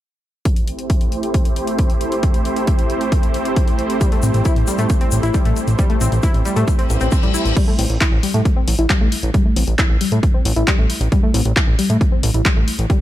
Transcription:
0.45 supersaw synth A3 C4 E4 G4 C5, kick, closed hi-hat
0.56 closed hi-hat
0.68 closed hi-hat
0.79 closed hi-hat
0.90 kick, closed hi-hat
1.01 closed hi-hat
1.12 closed hi-hat
1.23 closed hi-hat
1.34 kick, closed hi-hat
1.45 closed hi-hat
1.56 closed hi-hat
1.67 closed hi-hat
1.79 kick, closed hi-hat
1.90 closed hi-hat
2.01 closed hi-hat
2.12 closed hi-hat
2.23 kick, closed hi-hat
2.34 closed hi-hat
2.45 closed hi-hat
2.56 closed hi-hat
2.67 kick, closed hi-hat
2.79 closed hi-hat
2.90 closed hi-hat
3.01 closed hi-hat
3.12 kick, closed hi-hat
3.23 closed hi-hat
3.34 closed hi-hat
3.45 closed hi-hat
3.56 kick, closed hi-hat
3.68 closed hi-hat
3.79 closed hi-hat
3.90 closed hi-hat
4.01 synth pluck G3, kick, closed hi-hat, shaker
4.12 synth pluck A3, closed hi-hat
4.23 analog synth bass A1, synth pluck C4, closed hi-hat, shaker
4.34 analog synth bass A1, closed hi-hat, shaker
4.45 synth pluck E4, kick, closed hi-hat, shaker
4.56 analog synth bass A1, closed hi-hat
4.67 synth pluck G3, closed hi-hat, shaker
4.78 analog synth bass A2, synth pluck A3, closed hi-hat, shaker
4.90 kick, closed hi-hat, shaker
5.01 synth pluck C4, closed hi-hat
5.11 analog synth bass A1, closed hi-hat, shaker
5.23 analog synth bass A1, synth pluck E4, closed hi-hat, shaker
5.34 synth pluck G3, kick, closed hi-hat, shaker
5.45 analog synth bass A1, synth pluck A3, closed hi-hat
5.56 closed hi-hat, shaker
5.68 analog synth bass A1, closed hi-hat, shaker
5.79 synth pluck G3, kick, closed hi-hat, shaker
5.90 synth pluck A3, closed hi-hat
6.01 analog synth bass A1, synth pluck C4, closed hi-hat, shaker
6.12 analog synth bass A1, closed hi-hat, shaker
6.23 synth pluck E4, kick, closed hi-hat, shaker
6.34 analog synth bass A1, closed hi-hat
6.45 synth pluck G3, closed hi-hat, shaker
6.56 analog synth bass A2, synth pluck A3, closed hi-hat, shaker
6.68 kick, closed hi-hat, reverse cymbal, shaker
6.79 synth pluck C4, closed hi-hat
6.90 analog synth bass A1, closed hi-hat, shaker
7.01 analog synth bass A1, synth pluck C4, closed hi-hat, shaker
7.11 synth pluck C4, kick, closed hi-hat, shaker
7.23 analog synth bass A1, synth pluck G3, closed hi-hat
7.34 synth pluck E4, closed hi-hat, shaker
7.45 analog synth bass A1, closed hi-hat, shaker
7.56 synth pluck G3, kick, closed hi-hat, crash
7.68 synth pluck A3
7.79 analog synth bass A1, synth pluck C4, open hi-hat
7.90 analog synth bass A1, closed hi-hat
8.01 synth pluck E4, kick, clap, closed hi-hat
8.12 analog synth bass A1
8.23 synth pluck G3, open hi-hat
8.34 analog synth bass A2, synth pluck A3, closed hi-hat
8.45 kick, closed hi-hat
8.56 synth pluck C4
8.68 analog synth bass A1, open hi-hat
8.79 analog synth bass A1, synth pluck E4, closed hi-hat
8.90 synth pluck G3, kick, clap, closed hi-hat
9.01 analog synth bass A1, synth pluck A3
9.12 open hi-hat
9.23 analog synth bass A1, closed hi-hat
9.34 synth pluck G3, kick, closed hi-hat
9.45 synth pluck A3
9.56 analog synth bass A1, synth pluck C4, open hi-hat
9.67 analog synth bass A1, closed hi-hat
9.79 synth pluck E4, kick, clap, closed hi-hat
9.90 analog synth bass A1
10.01 synth pluck G3, open hi-hat
10.12 analog synth bass A2, synth pluck A3, closed hi-hat
10.23 kick, closed hi-hat
10.34 synth pluck C4
10.45 analog synth bass A1, open hi-hat
10.56 analog synth bass A1, synth pluck E4, closed hi-hat
10.68 synth pluck G3, kick, clap, closed hi-hat
10.79 analog synth bass A1, synth pluck A3
10.90 open hi-hat
11.01 analog synth bass A1, closed hi-hat
11.12 synth pluck G3, kick, closed hi-hat
11.23 synth pluck A3
11.34 analog synth bass A1, synth pluck C4, open hi-hat
11.45 analog synth bass A1, closed hi-hat
11.56 synth pluck E4, kick, clap, closed hi-hat
11.68 analog synth bass A1
11.79 synth pluck G3, open hi-hat
11.90 analog synth bass A2, synth pluck A3, closed hi-hat
12.01 kick, closed hi-hat
12.12 synth pluck C4
12.23 analog synth bass A1, open hi-hat
12.34 analog synth bass A1, synth pluck E4, closed hi-hat
12.45 synth pluck G3, kick, clap, closed hi-hat
12.57 analog synth bass A1, synth pluck A3
12.68 open hi-hat
12.79 analog synth bass A1, closed hi-hat
12.90 synth pluck G3, kick, closed hi-hat

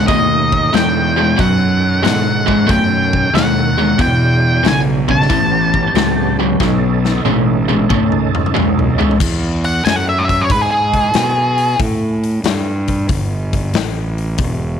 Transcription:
Already playing: tonewheel organ A3 C#4 D#4
0.07 fingered electric bass D#2, distorted electric guitar B2 A3, lead electric guitar D#5, kick, open hi-hat
0.52 kick
0.73 fingered electric bass E2, distorted electric guitar B2 G#3, lead electric guitar G5, snare, open hi-hat
1.17 distorted electric guitar B2 G#3
1.37 fingered electric bass F#2, distorted electric guitar B2 F#3, lead electric guitar F#5, kick, open hi-hat
1.42 tonewheel organ D#3 C#4 A4
2.02 fingered electric bass G#2, distorted electric guitar B2 G#3, lead electric guitar F#5, snare, open hi-hat
2.47 distorted electric guitar B2 G#3, kick
2.67 fingered electric bass F#2, distorted electric guitar B2 A3, lead electric guitar G5, kick, open hi-hat
3.13 kick
3.33 fingered electric bass D#2, distorted electric guitar B2 G#3, lead electric guitar F#5, snare, open hi-hat
3.78 distorted electric guitar B2 G#3
3.98 distorted electric guitar E2 B2, fingered electric bass E2, tonewheel organ F#3 G#3 D4, lead electric guitar G5, kick, open hi-hat
4.63 fingered electric bass B1, distorted electric guitar E2 C#3, snare, open hi-hat
4.68 lead electric guitar G#5
5.08 distorted electric guitar E2 C#3, lead electric guitar A5, kick
5.22 snare
5.29 fingered electric bass A1, distorted electric guitar A2 E3, tonewheel organ B3 C#4 G4, kick, open hi-hat
5.74 kick
5.94 fingered electric bass C#2, distorted electric guitar A2 F#3, snare, open hi-hat
6.39 distorted electric guitar A2 F#3
6.59 fingered electric bass B1, distorted electric guitar B2 F#3, tonewheel organ C#4 D#4 A4, kick, snare
7.05 snare
7.25 fingered electric bass A1, distorted electric guitar B2 G#3, high tom
7.69 distorted electric guitar B2 G#3, high tom
7.90 fingered electric bass C#2, distorted electric guitar B2 A3, kick, mid tom
8.12 mid tom
8.35 muted fingered electric bass stroke, mid tom
8.46 mid tom
8.55 fingered electric bass B1, distorted electric guitar B2 G#3, mid tom
8.79 floor tom
8.98 distorted electric guitar B2 G#3, muted fingered electric bass stroke, floor tom
9.11 floor tom
9.20 fingered electric bass E2, kick, crash
9.64 lead electric guitar F#5, open hi-hat
9.85 fingered electric bass F#2, lead electric guitar G#5, snare, open hi-hat
9.96 lead electric guitar F#5
10.09 lead electric guitar E5
10.19 lead electric guitar C#5
10.29 lead electric guitar E5, kick, open hi-hat
10.41 lead electric guitar C#5
10.50 fingered electric bass G#2, lead electric guitar B4, kick, open hi-hat
10.62 lead electric guitar G#4
10.71 lead electric guitar G#4
10.94 kick, open hi-hat
11.14 fingered electric bass B2, snare, open hi-hat
11.58 open hi-hat
11.79 fingered electric bass A2, kick, open hi-hat
12.24 open hi-hat
12.44 fingered electric bass G2, snare, open hi-hat
12.88 kick, open hi-hat
13.09 fingered electric bass G1, kick, open hi-hat
13.53 kick, open hi-hat
13.74 fingered electric bass A1, snare, open hi-hat
14.18 open hi-hat
14.38 fingered electric bass E1, kick, open hi-hat

